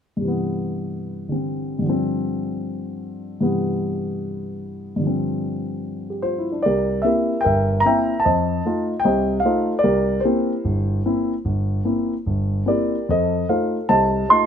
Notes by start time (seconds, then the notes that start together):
0.17 G2 C3
0.25 E3 B3
1.29 D3 G3 C4
1.79 G2 D3
1.85 F3
1.90 C4
3.41 G2 C3 E3 B3
4.96 G2 D3
5.03 F3
5.07 C4
6.10 G4
6.22 F4 C5
6.38 E4
6.52 D4
6.63 C2 G4 A#4 D5
7.02 A#3 C4 E4 A#4 E5
7.06 G4
7.41 A#4 G5
7.45 G1 E5
7.80 A#5
7.86 A#3 C4 E4 E5 G5
8.20 A5
8.25 F2 C5 D#5
8.65 A3 D#4 F4
9.00 G5
9.04 C2 C3 C5 D#5
9.40 F5
9.45 A3 D#4 F4 A4 C5
9.79 D5
9.84 C2 G4 A#4
10.20 G4 C5
10.25 A#3 C4 E4
10.65 G1
11.05 A#3 C4 E4
11.45 G1
11.85 A#3 C4 E4
12.26 G1
12.66 A#3 C4 E4 G4 A#4 D5
13.09 F2 A4 C5 D#5
13.49 A3 D#4 F4 A4 C5 F5
13.89 C2 C5 D#5 A5
14.29 A3 D#4 F4 D#5 A5 C6